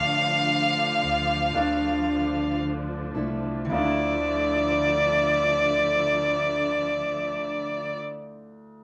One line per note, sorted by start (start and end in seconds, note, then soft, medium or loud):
0.00 0.50 A2 medium
0.00 3.04 D3 medium
0.00 3.67 D3 medium
0.00 3.05 F3 medium
0.00 3.67 F3 medium
0.00 1.54 A3 medium
0.00 0.94 D4 medium
0.00 1.55 D4 medium
0.00 3.67 D4 medium
0.00 0.94 F4 medium
0.00 1.57 A4 medium
0.00 0.94 D5 medium
0.00 2.58 F5 medium
1.03 1.51 D2 medium
1.54 3.12 D2 medium
1.54 3.18 A3 medium
1.54 3.60 D4 medium
1.54 3.17 D4 medium
1.54 3.60 F4 medium
1.54 3.14 A4 medium
1.54 3.60 D5 medium
3.15 3.67 C2 medium
3.15 3.72 A3 soft
3.15 3.72 D4 soft
3.15 3.71 E4 soft
3.15 3.70 A4 soft
3.65 7.92 D3 medium
3.69 7.94 D2 medium
3.69 7.95 D2 medium
3.69 7.94 D3 medium
3.69 7.97 F3 medium
3.69 7.95 F3 medium
3.69 7.95 D4 medium
3.69 7.92 E4 medium
3.69 7.95 F4 medium
3.69 7.96 D5 medium
3.69 7.95 E5 medium
3.74 8.01 A3 medium
3.74 8.05 D4 medium
3.74 7.97 D5 medium
3.82 8.09 E4 medium
3.82 8.12 A4 medium